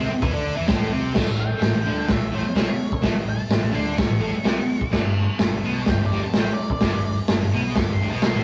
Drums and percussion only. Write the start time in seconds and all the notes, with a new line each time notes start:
0.22 kick, open hi-hat
0.68 kick, snare, open hi-hat, tambourine
1.15 kick, snare, crash
1.61 snare, open hi-hat, tambourine
2.08 kick, snare, open hi-hat
2.56 snare, open hi-hat, tambourine
2.92 kick
3.04 kick, snare, open hi-hat
3.49 snare, open hi-hat, tambourine
3.98 kick, snare, open hi-hat
4.44 snare, open hi-hat, tambourine
4.81 kick
4.93 kick, snare, crash
5.39 snare, open hi-hat, tambourine
5.87 kick, snare, open hi-hat
6.34 snare, open hi-hat, tambourine
6.70 kick
6.81 kick, snare, open hi-hat
7.28 snare, open hi-hat, tambourine
7.76 kick, snare, open hi-hat
8.22 snare, open hi-hat, tambourine